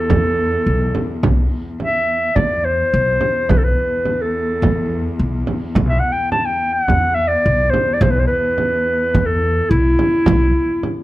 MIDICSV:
0, 0, Header, 1, 5, 480
1, 0, Start_track
1, 0, Tempo, 565504
1, 83, Time_signature, 4, 2, 24, 8
1, 9366, End_track
2, 0, Start_track
2, 0, Title_t, "Clarinet"
2, 0, Program_c, 0, 71
2, 0, Note_on_c, 0, 69, 93
2, 1056, Note_off_c, 0, 69, 0
2, 1537, Note_on_c, 0, 76, 89
2, 1998, Note_on_c, 0, 74, 93
2, 2011, Note_off_c, 0, 76, 0
2, 2249, Note_on_c, 0, 72, 94
2, 2262, Note_off_c, 0, 74, 0
2, 2973, Note_on_c, 0, 71, 85
2, 2986, Note_off_c, 0, 72, 0
2, 3031, Note_on_c, 0, 69, 73
2, 3044, Note_off_c, 0, 71, 0
2, 3087, Note_on_c, 0, 71, 87
2, 3100, Note_off_c, 0, 69, 0
2, 3578, Note_on_c, 0, 69, 73
2, 3591, Note_off_c, 0, 71, 0
2, 4350, Note_off_c, 0, 69, 0
2, 5000, Note_on_c, 0, 76, 85
2, 5090, Note_on_c, 0, 78, 87
2, 5103, Note_off_c, 0, 76, 0
2, 5195, Note_on_c, 0, 79, 86
2, 5208, Note_off_c, 0, 78, 0
2, 5355, Note_off_c, 0, 79, 0
2, 5360, Note_on_c, 0, 81, 90
2, 5478, Note_on_c, 0, 79, 93
2, 5491, Note_off_c, 0, 81, 0
2, 5712, Note_off_c, 0, 79, 0
2, 5712, Note_on_c, 0, 79, 114
2, 5823, Note_off_c, 0, 79, 0
2, 5823, Note_on_c, 0, 78, 114
2, 6065, Note_on_c, 0, 76, 98
2, 6078, Note_off_c, 0, 78, 0
2, 6175, Note_on_c, 0, 74, 107
2, 6188, Note_off_c, 0, 76, 0
2, 6537, Note_on_c, 0, 72, 94
2, 6550, Note_off_c, 0, 74, 0
2, 6738, Note_on_c, 0, 74, 85
2, 6751, Note_off_c, 0, 72, 0
2, 6808, Note_on_c, 0, 72, 89
2, 6820, Note_off_c, 0, 74, 0
2, 6880, Note_on_c, 0, 71, 92
2, 6893, Note_off_c, 0, 72, 0
2, 6955, Note_on_c, 0, 72, 83
2, 6967, Note_off_c, 0, 71, 0
2, 6972, Note_off_c, 0, 72, 0
2, 7021, Note_on_c, 0, 71, 94
2, 7859, Note_on_c, 0, 69, 103
2, 7872, Note_off_c, 0, 71, 0
2, 8232, Note_on_c, 0, 64, 97
2, 8245, Note_off_c, 0, 69, 0
2, 9366, Note_off_c, 0, 64, 0
2, 9366, End_track
3, 0, Start_track
3, 0, Title_t, "Cello"
3, 0, Program_c, 1, 42
3, 0, Note_on_c, 1, 40, 78
3, 2007, Note_off_c, 1, 40, 0
3, 2012, Note_on_c, 1, 40, 72
3, 5837, Note_off_c, 1, 40, 0
3, 5842, Note_on_c, 1, 40, 74
3, 9366, Note_off_c, 1, 40, 0
3, 9366, End_track
4, 0, Start_track
4, 0, Title_t, "Upright bass"
4, 0, Program_c, 2, 32
4, 88, Note_on_c, 2, 40, 87
4, 469, Note_off_c, 2, 40, 0
4, 564, Note_on_c, 2, 35, 89
4, 756, Note_off_c, 2, 35, 0
4, 1045, Note_on_c, 2, 35, 93
4, 1237, Note_off_c, 2, 35, 0
4, 2004, Note_on_c, 2, 40, 84
4, 2388, Note_off_c, 2, 40, 0
4, 2491, Note_on_c, 2, 35, 89
4, 2681, Note_off_c, 2, 35, 0
4, 2973, Note_on_c, 2, 35, 88
4, 3162, Note_off_c, 2, 35, 0
4, 3923, Note_on_c, 2, 40, 90
4, 4307, Note_off_c, 2, 40, 0
4, 4409, Note_on_c, 2, 35, 84
4, 4599, Note_off_c, 2, 35, 0
4, 4888, Note_on_c, 2, 35, 105
4, 5079, Note_off_c, 2, 35, 0
4, 5852, Note_on_c, 2, 40, 88
4, 6232, Note_off_c, 2, 40, 0
4, 6329, Note_on_c, 2, 35, 94
4, 6518, Note_off_c, 2, 35, 0
4, 6797, Note_on_c, 2, 35, 107
4, 6991, Note_off_c, 2, 35, 0
4, 7763, Note_on_c, 2, 40, 103
4, 8146, Note_off_c, 2, 40, 0
4, 8239, Note_on_c, 2, 35, 96
4, 8432, Note_off_c, 2, 35, 0
4, 8722, Note_on_c, 2, 35, 109
4, 8913, Note_off_c, 2, 35, 0
4, 9366, End_track
5, 0, Start_track
5, 0, Title_t, "Frame drum"
5, 82, Note_on_c, 9, 64, 96
5, 167, Note_off_c, 9, 64, 0
5, 804, Note_on_c, 9, 64, 66
5, 889, Note_off_c, 9, 64, 0
5, 1048, Note_on_c, 9, 64, 95
5, 1133, Note_off_c, 9, 64, 0
5, 1527, Note_on_c, 9, 64, 59
5, 1612, Note_off_c, 9, 64, 0
5, 2002, Note_on_c, 9, 64, 83
5, 2087, Note_off_c, 9, 64, 0
5, 2723, Note_on_c, 9, 64, 64
5, 2808, Note_off_c, 9, 64, 0
5, 2965, Note_on_c, 9, 64, 99
5, 3049, Note_off_c, 9, 64, 0
5, 3442, Note_on_c, 9, 64, 59
5, 3527, Note_off_c, 9, 64, 0
5, 3931, Note_on_c, 9, 64, 94
5, 4015, Note_off_c, 9, 64, 0
5, 4644, Note_on_c, 9, 64, 66
5, 4729, Note_off_c, 9, 64, 0
5, 4883, Note_on_c, 9, 64, 95
5, 4967, Note_off_c, 9, 64, 0
5, 5364, Note_on_c, 9, 64, 64
5, 5449, Note_off_c, 9, 64, 0
5, 5841, Note_on_c, 9, 64, 81
5, 5926, Note_off_c, 9, 64, 0
5, 6567, Note_on_c, 9, 64, 71
5, 6652, Note_off_c, 9, 64, 0
5, 6804, Note_on_c, 9, 64, 97
5, 6888, Note_off_c, 9, 64, 0
5, 7282, Note_on_c, 9, 64, 64
5, 7367, Note_off_c, 9, 64, 0
5, 7762, Note_on_c, 9, 64, 96
5, 7847, Note_off_c, 9, 64, 0
5, 8480, Note_on_c, 9, 64, 72
5, 8564, Note_off_c, 9, 64, 0
5, 8710, Note_on_c, 9, 64, 117
5, 8795, Note_off_c, 9, 64, 0
5, 9196, Note_on_c, 9, 64, 62
5, 9281, Note_off_c, 9, 64, 0
5, 9366, End_track
0, 0, End_of_file